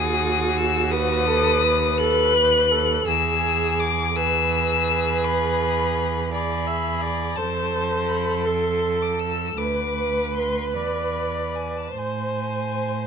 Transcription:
0.00 3.03 D#2 medium
0.00 0.93 F#4 medium
0.00 0.94 G#4 medium
0.00 0.58 D#6 medium
0.57 0.93 E6 loud
0.91 1.29 F#4 medium
0.91 1.98 B4 medium
0.91 1.99 D#6 loud
1.27 1.64 A4 medium
1.63 3.07 B4 medium
1.98 2.35 A4 medium
1.98 3.07 F#6 loud
2.34 2.72 B4 medium
2.71 3.09 A4 medium
3.07 7.37 E2 medium
3.07 4.13 G#4 medium
3.07 4.17 G#4 medium
3.07 3.81 E6 medium
3.80 4.17 D6 medium
4.15 6.29 G#4 medium
4.15 6.33 B4 medium
4.15 5.26 E6 medium
5.25 6.32 B5 medium
6.33 7.39 G#4 soft
6.33 6.68 D5 medium
6.33 7.37 B5 medium
6.67 7.03 E5 medium
7.01 7.38 D5 medium
7.36 9.56 F2 medium
7.36 9.59 A4 medium
7.36 8.47 C5 medium
7.36 8.10 A5 medium
8.09 8.47 B5 medium
8.45 9.59 A4 soft
8.45 9.03 C6 medium
9.02 9.21 D6 medium
9.19 9.59 E6 medium
9.57 10.75 D2 soft
9.57 11.97 B4 medium
9.57 10.76 B4 soft
9.57 10.36 D6 medium
10.34 10.74 C6 medium
10.73 11.97 E2 soft
10.73 11.97 D5 soft
10.73 11.57 B5 medium
11.56 11.79 G#5 soft
11.77 12.00 A5 soft
11.97 13.07 A2 soft
11.97 13.07 C5 soft
11.97 13.07 G#5 medium

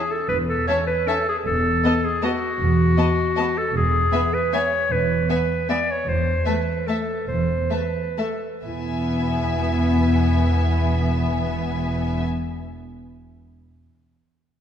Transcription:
0.00 0.13 G#4 medium
0.11 0.28 A4 medium
0.29 0.60 E1 soft
0.29 0.62 E2 medium
0.29 0.37 B4 medium
0.48 0.66 A4 medium
0.67 0.77 C#4 soft
0.67 0.86 C#5 medium
0.67 0.77 E5 soft
0.67 0.76 A5 soft
0.87 1.09 B4 medium
1.07 1.15 C#4 soft
1.07 1.27 A4 medium
1.07 1.16 E5 soft
1.07 1.16 A5 soft
1.28 1.36 G#4 medium
1.45 1.75 E1 soft
1.45 1.76 E2 medium
1.45 2.06 A4 medium
1.84 1.92 B3 soft
1.84 1.92 D#5 soft
1.84 1.92 A5 soft
2.05 2.23 G#4 medium
2.22 2.31 B3 soft
2.22 3.59 F#4 medium
2.22 2.31 D#5 soft
2.22 2.30 A5 soft
2.60 2.89 E1 soft
2.60 2.91 E2 medium
2.97 3.05 B3 soft
2.97 3.06 D#5 soft
2.97 3.06 A5 soft
3.36 3.46 B3 soft
3.36 3.44 D#5 soft
3.36 3.45 A5 medium
3.58 3.75 A4 medium
3.74 4.05 E1 medium
3.74 4.06 E2 medium
3.74 4.35 G#4 medium
4.12 4.21 B3 soft
4.12 4.21 E5 soft
4.12 4.20 G#5 soft
4.34 4.56 B4 medium
4.53 4.62 B3 soft
4.53 4.93 C#5 medium
4.53 4.62 E5 soft
4.53 4.61 G#5 medium
4.91 5.21 E1 soft
4.91 5.23 E2 medium
4.91 5.30 B4 medium
5.29 5.37 B3 soft
5.29 5.69 B4 medium
5.29 5.38 E5 soft
5.29 5.38 G#5 soft
5.69 5.77 B3 soft
5.69 5.92 D5 medium
5.69 5.77 E5 soft
5.69 5.77 G#5 soft
5.91 6.10 C#5 medium
6.08 6.38 E1 soft
6.08 6.40 E2 medium
6.08 6.48 C5 medium
6.45 6.55 A3 soft
6.45 6.88 B4 medium
6.45 6.53 E5 soft
6.45 6.54 A5 soft
6.87 6.95 A3 soft
6.87 7.27 A4 medium
6.87 6.97 E5 soft
6.87 6.96 A5 soft
7.28 7.62 E1 soft
7.28 7.64 E2 soft
7.28 7.74 C5 medium
7.71 7.79 A3 soft
7.71 8.21 B4 soft
7.71 7.79 E5 soft
7.71 7.80 A5 soft
8.18 8.27 A3 soft
8.18 8.43 A4 soft
8.18 8.27 E5 soft
8.18 8.26 A5 soft
8.65 12.22 E1 soft
8.65 12.22 E2 soft
8.65 12.22 B3 soft
8.65 12.22 E4 soft
8.65 12.22 E5 soft
8.65 12.22 G#5 soft

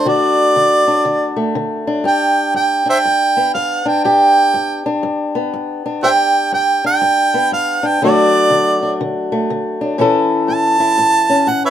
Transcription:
0.00 1.35 A3 medium
0.00 0.87 D4 medium
0.05 0.52 D3 medium
0.05 2.05 F#4 medium
0.05 1.53 D5 loud
0.56 1.02 D3 medium
0.88 1.87 D4 medium
1.05 1.51 D3 medium
1.36 2.05 A3 medium
1.55 2.02 D3 medium
1.87 2.85 D4 medium
2.04 2.51 G2 medium
2.04 4.05 G4 medium
2.04 2.55 G5 medium
2.54 3.01 G2 medium
2.54 2.88 G5 medium
2.86 3.85 D4 medium
2.86 2.98 C5 medium
2.86 2.98 E5 medium
2.86 3.53 G5 loud
3.05 3.51 G2 medium
3.37 5.35 B3 medium
3.54 4.01 G2 medium
3.54 3.89 F5 medium
3.86 4.85 D4 medium
3.86 4.04 G5 medium
4.04 4.51 G2 medium
4.04 6.01 G4 medium
4.04 5.01 G5 medium
4.54 5.00 G2 medium
4.86 5.85 D4 medium
5.03 5.49 G2 medium
5.35 6.01 B3 medium
5.54 5.99 G2 medium
5.86 6.84 D4 medium
6.03 6.49 G2 medium
6.03 7.99 G4 medium
6.03 6.10 C5 medium
6.03 6.10 E5 medium
6.03 6.51 G5 loud
6.52 6.98 G2 medium
6.52 6.85 G5 medium
6.84 7.82 D4 medium
6.84 7.50 G5 loud
7.02 7.48 G2 medium
7.34 7.99 B3 medium
7.52 7.97 G2 medium
7.52 7.88 F5 medium
7.83 7.99 D4 medium
7.83 8.02 G5 medium
8.02 8.47 D3 medium
8.02 9.97 F#3 medium
8.02 9.31 A3 medium
8.02 8.81 D4 medium
8.02 10.00 F#4 medium
8.02 8.98 D5 loud
8.50 8.96 D3 medium
8.83 9.80 D4 medium
9.01 9.46 D3 medium
9.32 9.99 A3 medium
9.50 9.95 D3 medium
9.81 9.97 D4 medium
9.98 10.44 A2 medium
9.98 11.70 E3 medium
9.98 11.28 C#4 medium
9.98 10.79 E4 medium
9.98 11.70 A4 medium
10.48 10.93 A2 medium
10.48 11.50 A5 loud
10.80 11.70 E4 medium
10.98 11.43 A2 medium
11.30 11.70 C#4 medium
11.47 11.70 A2 medium
11.47 11.63 F#5 medium
11.65 11.70 B4 medium
11.65 11.70 C#5 medium
11.65 11.70 E5 medium

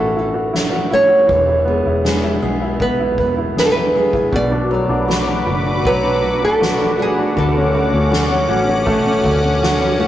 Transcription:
0.00 1.25 A1 medium
0.00 1.30 A2 medium
0.00 0.91 A3 medium
0.00 1.25 A3 medium
0.00 0.92 C#4 soft
0.00 0.17 E4 medium
0.00 0.34 F#4 medium
0.00 0.93 F#4 medium
0.00 0.93 A4 loud
0.17 0.52 E4 medium
0.17 ride medium
0.34 0.70 F#4 medium
0.53 0.89 E4 medium
0.53 snare loud
0.53 ride medium
0.72 1.07 F#4 medium
0.90 1.37 A3 medium
0.90 1.38 C#4 medium
0.90 1.27 E4 medium
0.90 1.38 F#4 medium
0.90 2.81 C#5 loud
0.90 ride medium
1.08 1.28 F#4 medium
1.08 ride medium
1.27 1.82 E1 loud
1.27 4.33 E2 medium
1.27 4.28 E3 medium
1.27 kick loud
1.27 ride medium
1.47 1.84 E4 medium
1.47 ride soft
1.65 2.03 G#3 medium
1.65 2.79 B3 medium
1.65 ride soft
1.86 2.39 E1 medium
1.86 2.22 E4 medium
2.04 3.94 G#3 medium
2.04 2.42 B3 medium
2.04 3.95 E4 medium
2.04 2.41 G#4 medium
2.04 snare loud
2.04 ride medium
2.23 2.60 E4 medium
2.42 3.18 B1 medium
2.42 3.95 B3 medium
2.42 3.55 G#4 medium
2.42 ride medium
2.62 2.98 E4 medium
2.79 3.17 B3 medium
2.79 3.58 B4 medium
2.79 kick loud
2.79 ride medium
3.00 3.36 E4 medium
3.18 4.29 E2 medium
3.18 4.30 B3 medium
3.18 kick loud
3.18 ride medium
3.37 3.74 E4 medium
3.56 3.93 G#4 medium
3.56 3.65 B4 medium
3.56 snare loud
3.56 ride medium
3.65 3.71 A4 medium
3.72 4.12 E4 medium
3.72 4.30 B4 medium
3.94 4.41 G#3 medium
3.94 4.74 B3 medium
3.94 4.41 E4 medium
3.94 4.32 G#4 medium
3.94 ride medium
4.13 4.32 E4 medium
4.13 kick loud
4.13 ride soft
4.32 4.86 B1 medium
4.32 7.32 B2 medium
4.32 7.37 B2 medium
4.32 10.07 F#4 medium
4.32 7.34 B4 medium
4.32 5.83 D5 loud
4.32 10.07 F#5 medium
4.32 7.34 D6 loud
4.32 kick loud
4.32 ride medium
4.52 4.88 D4 medium
4.52 ride soft
4.70 5.84 F#3 medium
4.70 5.08 A3 medium
4.70 ride soft
4.89 5.43 B1 loud
4.89 5.26 D4 medium
5.08 6.99 A3 medium
5.08 5.46 D4 medium
5.08 5.45 F#4 medium
5.08 7.00 F#4 medium
5.08 snare loud
5.08 ride medium
5.27 5.64 D4 medium
5.46 5.82 F#1 loud
5.46 6.99 D4 medium
5.46 6.59 F#4 medium
5.46 ride medium
5.66 6.02 D4 medium
5.85 7.33 B1 loud
5.85 6.22 F#3 medium
5.85 6.44 B4 loud
5.85 kick loud
5.85 ride medium
6.04 6.40 D4 medium
6.23 7.33 F#3 medium
6.23 ride medium
6.42 6.77 D4 medium
6.42 7.02 A4 loud
6.60 6.97 F#4 medium
6.60 snare loud
6.60 ride medium
6.79 7.16 D4 medium
6.98 7.74 A3 medium
6.98 8.12 D4 medium
6.98 7.35 F#4 medium
6.98 8.12 F#4 medium
6.98 ride medium
7.02 7.36 G#4 medium
7.18 7.36 D4 medium
7.18 ride soft
7.36 7.89 D2 loud
7.36 10.07 D3 medium
7.36 10.07 C#4 medium
7.36 8.83 A4 medium
7.36 10.07 D6 medium
7.36 kick loud
7.36 ride medium
7.56 7.91 C#4 medium
7.56 ride soft
7.74 8.84 A3 medium
7.74 8.11 A3 medium
7.74 ride medium
7.93 8.45 D2 medium
7.93 8.28 C#4 medium
8.11 9.98 A3 medium
8.11 8.49 C#4 medium
8.11 8.47 F#4 medium
8.11 9.99 F#4 medium
8.11 snare loud
8.11 ride medium
8.30 8.66 C#4 medium
8.49 9.20 A1 loud
8.49 9.99 C#4 medium
8.49 9.61 F#4 medium
8.49 ride medium
8.67 9.04 C#4 medium
8.86 9.23 A3 medium
8.86 kick loud
9.06 9.42 C#4 medium
9.24 10.07 D2 loud
9.24 10.07 A3 medium
9.24 kick loud
9.24 ride medium
9.44 9.79 C#4 medium
9.62 9.98 F#4 medium
9.62 snare loud
9.62 ride medium
9.81 10.07 C#4 medium
9.98 10.07 A3 medium
9.98 10.07 C#4 medium
9.98 10.07 F#4 medium
9.98 ride medium

